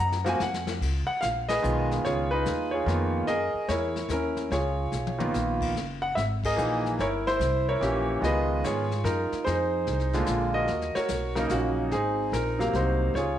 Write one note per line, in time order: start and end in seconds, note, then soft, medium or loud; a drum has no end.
0.00 0.38 F#2 loud
0.00 0.25 A#5 loud
0.12 snare medium
0.24 0.38 F3 medium
0.24 0.38 A#3 medium
0.24 0.38 C4 medium
0.24 0.38 F#4 medium
0.24 snare medium
0.29 0.41 G#5 loud
0.40 0.80 F2 loud
0.40 0.73 F#5 medium
0.40 snare medium
0.54 snare medium
0.67 snare loud
0.81 1.06 C#2 medium
0.81 brush sweep medium
0.81 kick medium
0.81 snare soft
0.81 crash medium
1.07 1.22 F#5 loud
1.21 1.62 A#1 medium
1.21 1.27 F5 loud
1.21 snare medium
1.21 hi-hat pedal medium
1.49 2.01 G#4 medium
1.49 2.01 B4 medium
1.49 1.87 D#5 loud
1.49 snare medium
1.49 ride medium
1.62 2.03 B1 loud
1.62 2.25 D#3 medium
1.62 2.25 G#3 medium
1.62 2.26 B3 medium
1.62 2.05 F4 medium
1.62 hi-hat pedal medium
1.91 snare soft
2.05 2.44 C#2 medium
2.05 2.31 F4 medium
2.05 2.69 G#4 medium
2.05 2.29 C#5 medium
2.05 brush sweep soft
2.05 snare soft
2.31 2.83 D#4 medium
2.31 2.72 F4 medium
2.31 2.73 B4 medium
2.46 2.85 D#2 medium
2.46 snare medium
2.46 hi-hat pedal medium
2.71 2.87 F4 medium
2.71 3.25 G#4 medium
2.71 3.23 C#5 medium
2.86 3.26 F2 medium
2.86 3.27 D#3 medium
2.86 3.28 A#3 medium
2.86 3.28 B3 medium
2.86 3.28 F4 medium
2.86 snare soft
3.27 3.53 F#2 medium
3.27 3.92 G#4 medium
3.27 3.69 A#4 medium
3.27 3.70 D#5 loud
3.27 brush sweep soft
3.27 snare soft
3.54 muted upright bass stroke soft
3.68 4.08 E2 medium
3.68 4.10 E4 medium
3.68 4.10 A#4 medium
3.68 4.11 C#5 medium
3.68 snare medium
3.68 hi-hat pedal medium
3.96 snare soft
4.09 4.49 D#2 medium
4.09 4.49 E4 medium
4.09 4.49 A#4 medium
4.09 snare medium
4.09 hi-hat pedal medium
4.13 4.50 C#4 medium
4.37 snare soft
4.51 4.91 C#2 medium
4.51 5.19 F4 medium
4.51 5.30 G#4 medium
4.51 5.30 C#5 medium
4.51 brush sweep soft
4.51 snare soft
4.92 5.32 B1 medium
4.92 snare soft
4.92 hi-hat pedal medium
5.07 mid tom medium
5.18 5.71 D#3 medium
5.18 5.72 A#3 medium
5.18 5.72 B3 medium
5.18 5.72 F4 medium
5.18 mid tom medium
5.34 5.74 A#1 medium
5.34 snare medium
5.34 hi-hat pedal medium
5.61 kick medium
5.61 crash medium
5.75 6.15 F#1 medium
5.75 brush sweep soft
5.75 snare soft
6.02 6.16 F#5 loud
6.15 6.56 G#1 medium
6.15 6.21 E5 medium
6.15 snare medium
6.15 hi-hat pedal soft
6.44 6.57 G#4 medium
6.44 6.96 A#4 medium
6.44 6.83 D#5 loud
6.44 kick medium
6.44 crash medium
6.56 6.98 A#1 medium
6.56 6.98 E3 medium
6.56 6.98 A#3 medium
6.56 6.99 D#4 medium
6.56 6.99 G#4 medium
6.56 hi-hat pedal medium
6.86 snare soft
6.99 7.38 G1 medium
6.99 7.26 E4 medium
6.99 7.64 A#4 medium
6.99 7.06 C#5 loud
6.99 brush sweep soft
6.99 snare soft
7.27 7.68 E4 medium
7.27 7.64 C5 loud
7.27 snare soft
7.39 7.79 C2 medium
7.39 snare medium
7.39 hi-hat pedal medium
7.69 8.20 E4 medium
7.69 8.19 A#4 medium
7.69 8.19 C#5 loud
7.81 8.21 A#1 medium
7.81 8.22 E3 medium
7.81 8.22 A#3 medium
7.81 8.23 C#4 medium
7.81 8.23 G4 medium
7.81 snare soft
8.21 8.62 C#2 medium
8.21 8.84 D#3 medium
8.21 8.85 G#3 medium
8.21 8.85 B3 medium
8.21 8.65 F4 medium
8.21 8.62 D#5 loud
8.21 brush sweep medium
8.21 snare soft
8.26 8.65 G#4 medium
8.26 8.88 B4 medium
8.64 9.04 G#2 medium
8.64 9.04 F4 medium
8.64 9.29 G#4 medium
8.64 9.02 C#5 medium
8.64 snare medium
8.64 hi-hat pedal medium
8.91 snare soft
9.04 9.29 F#2 medium
9.04 9.43 D#4 medium
9.04 9.43 F4 medium
9.04 9.47 A#4 medium
9.04 snare medium
9.04 hi-hat pedal medium
9.32 muted upright bass stroke soft
9.32 snare soft
9.45 9.86 F2 medium
9.45 10.24 D#4 medium
9.45 10.24 G#4 medium
9.45 10.23 C5 loud
9.45 brush sweep medium
9.45 snare soft
9.87 10.27 C2 medium
9.87 snare soft
10.00 snare soft
10.13 10.66 D3 medium
10.13 10.67 G#3 medium
10.13 10.67 A#3 medium
10.13 10.67 F4 medium
10.13 snare soft
10.26 10.68 A#1 medium
10.26 snare medium
10.26 hi-hat pedal medium
10.54 10.95 F#4 medium
10.54 10.96 A#4 medium
10.54 10.97 D#5 loud
10.68 10.94 D#2 medium
10.68 brush sweep soft
10.68 snare soft
10.81 snare soft
10.95 11.48 F#4 medium
10.95 11.34 A#4 medium
10.95 11.38 C#5 loud
10.95 muted upright bass stroke soft
10.95 snare medium
11.09 11.50 B1 medium
11.09 snare medium
11.09 hi-hat pedal medium
11.35 11.89 C#3 medium
11.35 11.89 F#3 medium
11.35 11.51 A#3 medium
11.35 11.90 D#4 medium
11.35 11.51 A#4 medium
11.35 snare medium
11.49 11.91 A#1 medium
11.49 11.90 A#3 medium
11.49 11.90 F#4 medium
11.49 snare medium
11.49 hi-hat pedal medium
11.54 11.91 C#4 medium
11.91 12.32 G#1 medium
11.91 12.57 C4 medium
11.91 12.57 D#4 medium
11.91 12.35 G#4 medium
11.91 brush sweep medium
11.91 snare soft
12.32 12.73 A#1 medium
12.32 12.58 A#4 medium
12.32 snare medium
12.32 hi-hat pedal medium
12.59 13.12 C3 medium
12.59 13.12 F#3 medium
12.59 13.13 A#3 medium
12.59 12.75 A#4 medium
12.59 13.13 F5 medium
12.59 snare soft
12.73 13.13 C2 medium
12.73 13.14 D#4 medium
12.73 13.14 F#4 medium
12.73 13.13 C5 medium
12.73 snare soft
13.14 13.39 C#2 medium
13.14 13.39 F4 medium
13.14 13.39 G#4 medium
13.14 13.39 C#5 medium
13.14 brush sweep medium
13.14 snare soft